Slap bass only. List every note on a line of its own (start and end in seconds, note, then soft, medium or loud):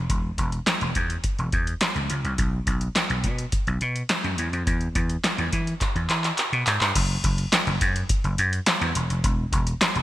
0.10 0.30 E1 loud
0.38 0.58 E1 medium
0.81 0.92 E1 loud
0.95 1.16 E2 loud
1.39 1.49 E1 medium
1.53 1.73 E2 loud
1.95 2.06 C#2 medium
2.10 2.20 C#2 medium
2.24 2.34 C2 medium
2.38 2.59 B1 loud
2.67 2.87 B1 loud
3.10 3.26 B1 medium
3.24 3.44 B2 medium
3.67 3.77 B1 medium
3.81 4.02 B2 loud
4.24 4.34 F#2 medium
4.39 4.49 E2 medium
4.53 4.63 F2 medium
4.67 4.87 E2 loud
4.95 5.16 E2 medium
5.38 5.48 E2 medium
5.53 5.73 E3 loud
5.95 6.06 E2 medium
6.10 6.30 E3 medium
6.53 6.63 B2 medium
6.67 6.77 G#2 medium
6.81 6.91 G2 medium
6.96 7.16 F#1 loud
7.24 7.44 F#1 medium
7.67 7.77 F#1 loud
7.81 8.01 F#2 loud
8.24 8.34 F#1 medium
8.38 8.59 F#2 loud
8.81 8.91 E2 loud
8.96 9.06 E1 loud
9.10 9.20 F1 medium
9.24 9.44 E1 loud
9.52 9.73 E1 medium
9.96 10.02 E1 loud